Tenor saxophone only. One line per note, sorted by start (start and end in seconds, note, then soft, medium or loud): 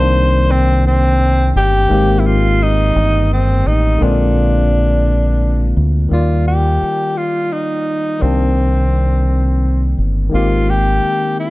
0.00 0.53 C5 loud
0.51 0.85 C4 medium
0.87 1.52 C4 medium
1.57 2.21 G4 loud
2.19 2.28 E4 medium
2.27 2.64 F4 medium
2.63 3.31 D#4 loud
3.33 3.69 C4 medium
3.67 4.05 D#4 medium
4.03 5.77 D4 medium
6.13 6.45 F4 medium
6.48 7.19 G4 medium
7.17 7.54 F4 medium
7.52 8.24 D#4 medium
8.22 9.97 C4 medium
10.35 10.71 F4 medium
10.70 11.38 G4 loud
11.40 11.50 F4 loud